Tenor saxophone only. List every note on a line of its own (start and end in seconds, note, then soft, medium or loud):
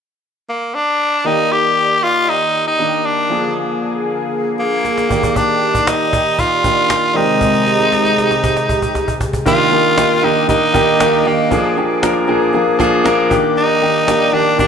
0.49 0.76 A#3 medium
0.75 1.28 D4 medium
1.27 1.54 D#4 medium
1.52 2.05 G4 medium
2.04 2.31 F4 medium
2.29 2.67 D#4 medium
2.68 3.08 D#4 medium
3.06 3.57 D4 medium
4.60 5.38 A#3 medium
5.37 5.89 D4 medium
5.88 6.41 D#4 medium
6.39 7.18 F4 loud
7.16 9.21 D#4 medium
9.47 10.26 F4 loud
10.24 10.49 D#4 medium
10.50 11.28 D#4 medium
11.27 11.78 A#3 medium
13.58 14.36 D#4 loud
14.34 14.59 D4 medium
14.60 14.67 D4 medium